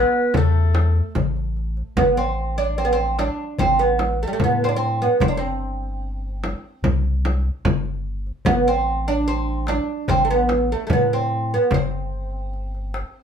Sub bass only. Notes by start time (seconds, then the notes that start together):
0.34 E2
1.16 A1
1.96 A1
3.59 A1
4.39 A2
5.21 G1
6.83 C2
7.64 G1
8.46 A1
10.09 A1
10.90 A2
11.71 G1